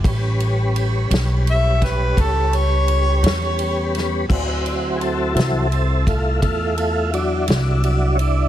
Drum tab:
CC |------------|x-----------|
RD |xxxxxxxxxxxx|-xxxxxxxxxxx|
SD |---o-o---o-o|---o-----o--|
BD |o----oo-----|o----oo-----|